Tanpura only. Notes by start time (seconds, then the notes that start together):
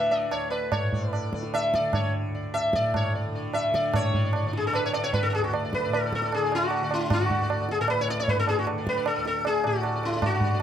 Already playing: D2 A2 D3
0.31 D2
0.81 A2
1.30 D3
1.80 D3
2.28 D2
2.76 A2
3.24 D3
3.71 D3
3.93 A2
4.42 D3
4.90 D3
5.38 D2
5.87 A2
6.35 D3
6.82 D3
7.29 D2
7.78 A2
8.25 D3
8.72 D3
9.18 D2
9.65 A2
10.12 D3
10.58 D3